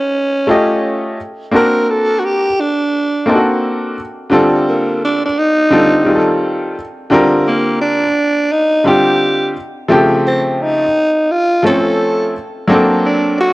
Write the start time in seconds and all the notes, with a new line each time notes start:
Already playing: C#4
0.47 A3 C#4 F4 G4 D#5
1.51 A#3 C4 D4 F#4 A#4
1.56 A#4
1.90 A4
2.19 F#4
2.25 G4
2.60 D4
3.26 A#3 C4 D4 D#4 A4
3.35 F#4
4.30 D3 G3 C4 F4 A4
4.69 A#3
5.05 D4
5.25 D4
5.39 D#4
5.70 D3 G3 C4 F4 A4
6.05 D#3 G3 C4 F4 G#4
6.15 A4
7.10 D3 G3 C4 F4 A#4
7.48 A#3
7.82 D4
8.52 D#4
8.84 D3 G3 C4 F4 G4
9.88 C#3 F3 A3 C4 G4
10.27 C4
10.62 D#4
11.32 F4
11.63 F3 A3 C4 C#4 A4
12.68 F#3 A#3 C4 D4 A4
13.06 D4
13.41 F#4